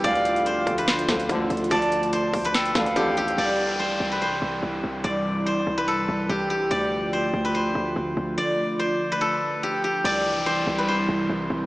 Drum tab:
HH |x--x--x--x--x-----x--x--x--x--x--x--x-----x-x-x-|x--x--x--x--x-----o--x--x--x--x--x--x-----x--x--|------------------------------------------------|------------------------------------------------|
SD |------------------------o-----o-----------------|------------------------o-----o-----------------|------------------------------------------------|------------------------------------------------|
BD |o-----------------o-----------o-----o-----------|o-----------------o-----------o-----o-----------|------------------------------------------------|------------------------------------------------|

HH |------------------------------------------------|------------------------------------------------|------------------------------------------------|
SD |------------------------------------------------|------------------------------------------------|------------------------------------------------|
BD |------------------------------------------------|------------------------------------------------|------------------------------------------------|